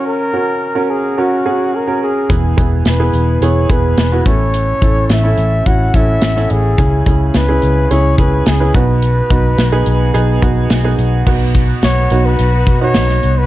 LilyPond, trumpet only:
\new Staff \with { instrumentName = "Trumpet" } { \time 4/4 \key b \mixolydian \tempo 4 = 107 ais'4. gis'8 fis'4 ais'8 gis'8~ | gis'8 r8 b'4 cis''8 b'4 cis''8~ | cis''4 e''4 fis''8 e''4 gis'8~ | gis'8 r8 b'4 cis''8 b'8 gis'8 b'8~ |
b'2. r4 | r4 cis''8. b'4 cis''4 b'16 | }